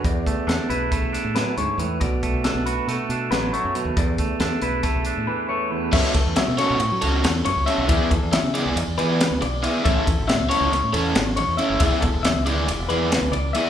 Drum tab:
CC |---------|---------|---------|x--------|
RD |---------|---------|---------|-xxxxxxxx|
HH |xxxxxxxxx|xxxxxxxxx|xxxxxx---|---------|
SD |--o--oo--|--o-o-o--|--o-o----|-ooo--o-o|
BD |oo--o----|oo-------|oo--o----|oo-------|

CC |---------|---------|---------|
RD |xxxxxxxxx|xxxxxxxxx|xxxxxxxxx|
HH |---------|---------|---------|
SD |--o---o--|--o-o-o--|--o-o-o--|
BD |oo-------|oo-------|oo-------|